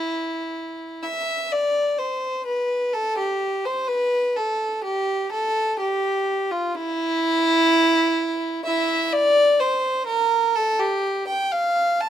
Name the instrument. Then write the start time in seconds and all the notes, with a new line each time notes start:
violin
Already playing: E4
1.03 E5
1.52 D5
1.98 C5
2.46 B4
2.94 A4
3.18 G4
3.65 C5
3.88 B4
4.36 A4
4.84 G4
5.33 A4
5.80 G4
6.51 F4
6.75 E4
8.66 E4 E5
9.13 D5
9.60 C5
10.07 A#4
10.56 A4
10.79 G4
11.28 G5
11.52 F5
12.01 A5